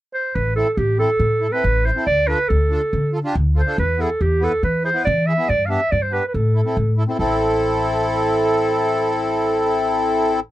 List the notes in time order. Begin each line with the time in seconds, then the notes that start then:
0.14 C5
0.35 A1 B4
0.56 C4 E4 A4
0.74 A1 G4 A4
0.98 C4 E4 A4
1.20 A2
1.41 E4 A4
1.52 C4 E4 A4 B4
1.64 A1
1.85 E4 B4 C5
1.95 C4 E4 A4
2.06 D2 D5
2.27 D4 F4 A4 B4
2.49 D2 A4
2.70 D4 F4 A4
2.93 D3
3.13 F4 A4
3.24 D4 F4 G4
3.35 D2
3.55 F4 A4 C5
3.66 D4 F4 A4
3.78 E2 B4
3.98 B3 E4 G#4 A4
4.21 E2 G4
4.40 B3 E4 A4 B4
4.63 E3 B4
4.83 E4 G#4 C5
4.93 B3 E4 B4
5.05 E3 D5
5.27 E4 G#4 E5
5.37 B3 E4 G#4
5.49 G2 D5
5.66 B3 D4 F5
5.70 G4 E5
5.91 G2 D5
6.02 C5
6.11 B3 D4 G4 B4
6.28 B4
6.34 A2 A4
6.55 E4 A4
6.65 C4 E4 A4
6.77 A2
6.97 E4 A4
7.08 C4 E4 A4
7.19 A1 C4 E4 A4